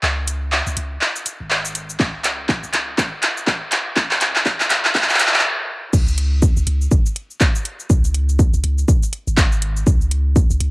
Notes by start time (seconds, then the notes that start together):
0.03 C#2, clap
0.28 closed hi-hat, shaker
0.52 clap
0.67 C#2, shaker
0.77 C#2, closed hi-hat, shaker
1.01 clap
1.16 shaker
1.26 closed hi-hat, shaker
1.40 G#1
1.51 clap
1.65 shaker
1.75 closed hi-hat, shaker
1.90 shaker
2.00 C#2, kick, clap
2.24 clap, closed hi-hat, shaker
2.49 kick, clap
2.63 C#2, shaker
2.73 C#2, clap, closed hi-hat
2.98 G#1, kick, clap, shaker
3.23 clap, closed hi-hat
3.37 shaker
3.47 kick, clap
3.72 clap, closed hi-hat
3.96 C#2, kick, clap
4.11 clap
4.21 clap, closed hi-hat, shaker
4.36 clap
4.46 kick, clap
4.60 C#2, clap, shaker
4.70 C#2, clap, closed hi-hat, shaker
4.85 clap
4.95 kick, clap
5.02 clap
5.09 clap, shaker
5.14 clap
5.19 clap, closed hi-hat, shaker
5.27 clap
5.34 G#1, clap
5.39 clap
5.93 C#2, kick, crash, shaker
6.08 shaker
6.18 closed hi-hat
6.42 kick, shaker
6.57 C#2, shaker
6.67 C#2, closed hi-hat
6.81 shaker
6.91 G#1, kick, shaker
7.06 shaker
7.16 closed hi-hat
7.31 shaker
7.41 kick, clap, shaker
7.55 shaker
7.65 closed hi-hat
7.80 shaker
7.90 C#2, kick, shaker
8.04 shaker
8.14 closed hi-hat
8.29 shaker
8.39 kick, shaker
8.54 C#2, shaker
8.64 C#2, closed hi-hat
8.78 shaker
8.88 kick, shaker
9.03 shaker
9.13 closed hi-hat
9.27 G#1, shaker
9.37 kick, clap, shaker
9.52 shaker
9.62 closed hi-hat
9.77 shaker
9.87 C#2, kick, shaker
10.01 shaker
10.11 closed hi-hat
10.36 kick, shaker
10.50 C#2, shaker
10.60 C#2, closed hi-hat